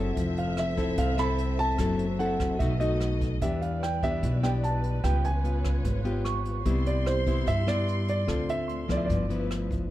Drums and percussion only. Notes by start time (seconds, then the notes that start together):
0.17 kick, closed hi-hat
0.37 closed hi-hat
0.57 cross-stick, closed hi-hat
0.77 kick, closed hi-hat
0.98 kick, closed hi-hat
1.18 cross-stick, closed hi-hat
1.38 closed hi-hat
1.59 closed hi-hat
1.78 kick, cross-stick, closed hi-hat
1.99 closed hi-hat
2.20 closed hi-hat
2.40 kick, cross-stick, closed hi-hat
2.60 kick, closed hi-hat
2.81 closed hi-hat
3.01 cross-stick, closed hi-hat
3.21 kick, closed hi-hat
3.42 kick, closed hi-hat
3.62 closed hi-hat
3.83 cross-stick, closed hi-hat
4.03 kick, closed hi-hat
4.23 kick, closed hi-hat
4.43 cross-stick, closed hi-hat
4.64 closed hi-hat
4.84 closed hi-hat
5.04 kick, cross-stick, closed hi-hat
5.24 closed hi-hat
5.45 closed hi-hat
5.65 kick, cross-stick, closed hi-hat
5.85 kick, closed hi-hat
6.05 closed hi-hat
6.25 cross-stick, closed hi-hat
6.45 closed hi-hat
6.65 kick, closed hi-hat
6.86 closed hi-hat
7.06 cross-stick, closed hi-hat
7.27 kick, closed hi-hat
7.47 kick, closed hi-hat
7.68 cross-stick, closed hi-hat
7.88 closed hi-hat
8.08 closed hi-hat
8.28 kick, cross-stick, closed hi-hat
8.49 closed hi-hat
8.69 closed hi-hat
8.89 kick, cross-stick, closed hi-hat
9.10 kick, closed hi-hat
9.30 closed hi-hat
9.51 cross-stick, closed hi-hat
9.71 kick, closed hi-hat